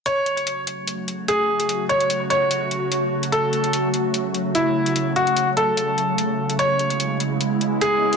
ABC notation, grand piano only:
X:1
M:4/4
L:1/16
Q:"Swing 16ths" 1/4=147
K:F#m
V:1 name="Grand piano"
c6 z6 G4- | G2 c3 z c8- c2 | A6 z6 E4- | E2 F3 z A8- A2 |
c6 z6 G4 |]